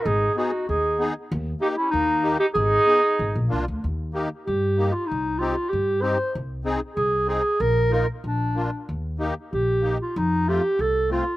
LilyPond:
<<
  \new Staff \with { instrumentName = "Clarinet" } { \time 2/4 \key gis \minor \tempo 4 = 95 gis'8 fis'8 gis'8. r16 | r8 g'16 e'16 dis'8. g'16 | gis'4. r8 | \key ees \major r4 g'8. f'16 |
ees'8 f'8 g'8 c''8 | r4 aes'8 aes'8 | bes'8 bes'8 d'4 | r4 g'8. f'16 |
ees'8 g'8 a'8 f'8 | }
  \new Staff \with { instrumentName = "Accordion" } { \time 2/4 \key gis \minor r8 <b dis' gis'>8 r8 <b dis' gis'>8 | r8 <ais dis' g'>8 r8 <ais dis' g'>8 | r8 <b dis' gis'>8 r8 <ais d' eis'>8 | \key ees \major r8 <bes ees' g'>8 r8 <bes ees' g'>8 |
r8 <c' ees' g'>8 r8 <c' ees' g'>8 | r8 <c' ees' aes'>8 r8 <c' ees' aes'>8 | r8 <bes ees' f'>8 r8 <bes d' f'>8 | r8 <bes ees' g'>8 r8 <bes ees' g'>8 |
r8 <a c' f'>8 r8 <a c' f'>8 | }
  \new Staff \with { instrumentName = "Trumpet" } { \time 2/4 \key gis \minor dis'8 dis'8 dis'8. r16 | r8 dis'16 cis'16 ais8. dis'16 | dis'4. r8 | \key ees \major r2 |
r2 | r2 | r2 | r2 |
r2 | }
  \new Staff \with { instrumentName = "Upright bass" } { \clef bass \time 2/4 \key gis \minor gis,,8 r8 dis,4 | dis,8 r8 dis,4 | gis,,8 r8 gis,,16 ais,,16 bis,,16 d,16 | \key ees \major ees,4 g,4 |
c,4 g,4 | c,4 c,4 | bes,,4 bes,,4 | ees,4 bes,,4 |
f,4 c,4 | }
>>